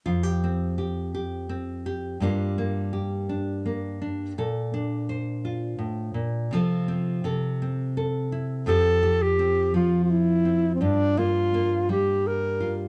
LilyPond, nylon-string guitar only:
\new Staff \with { instrumentName = "Nylon-string guitar" } { \time 3/4 \key f \major \tempo 4 = 84 << { f'16 g'16 c'8 g'8 g'8 c'8 g'8 | <g bes d' f'>8 bes8 g'8 d'8 bes8 d'8 | a'8 d'8 c''8 f'4. | <f c' f' a'>8 c'8 a'8 c'8 a'8 e'8 |
<f c' g'>8 g'8 c'4. c'8 | f'8 bes8 bes4. f'8 | } \\ { f,2. | g,2. | bes,2 a,8 bes,8 | c4 c2 |
f,4. f4. | g,4. g4. | } >> }